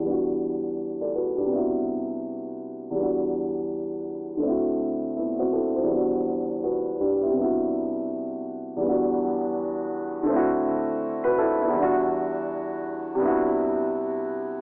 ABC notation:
X:1
M:4/4
L:1/16
Q:"Swing 16ths" 1/4=82
K:Em
V:1 name="Upright piano"
z4 z [Ad] [FB] [DG]2 z6 z | z12 [B,E] [CF] [EA] [Fc]- | [Fc] z3 [FB]2 [DG] [B,E]2 z6 z | z12 z [FB] [EA] [B,E]- |
[B,E] z12 z3 |]
V:2 name="Upright piano"
[E,,G,B,DF]8 [C,G,B,DEF]8 | [E,,G,B,DF]8 [D,A,CEF]8 | [E,,G,B,DF]8 [C,G,B,DEF]8 | [E,,G,B,DF]8 [D,A,CEF]8 |
[E,,G,B,DF]8 [C,G,B,DEF]8 |]